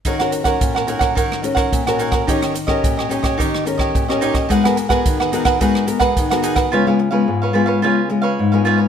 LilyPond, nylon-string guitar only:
\new Staff \with { instrumentName = "Nylon-string guitar" } { \time 4/4 \key ees \minor \tempo 4 = 108 << { <des' ges' bes'>16 <des' ges' bes'>8 <des' ges' bes'>8. <des' ges' bes'>4 <des' ges' bes'>8. <des' ges' bes'>8. | <des' g' bes'>8 r16 <des' g' bes'>8. <des' g' bes'>8. r16 <des' g' bes'>8. <des' g' bes'>8. | <ces' ges' bes'>16 <ces' ges' bes'>8 <ces' ges' bes'>8. <ces' ges' bes'>8 <ces' ges' bes'>8 <ces' ges' bes'>8. <ces' ges' bes'>8. | <aes ces' f'>16 <aes ces' f'>8 <aes ces' f'>8. <aes ces' f'>8 <aes ces' f'>16 r16 <aes ces' f'>8 r16 <aes ces' f'>8. | } \\ { ees4 bes,4 ees4 bes,4 | ees4 bes,4 ees4 bes,4 | aes4 ees4 aes4 ees4 | des4 aes,4 des4 aes,4 | } >> }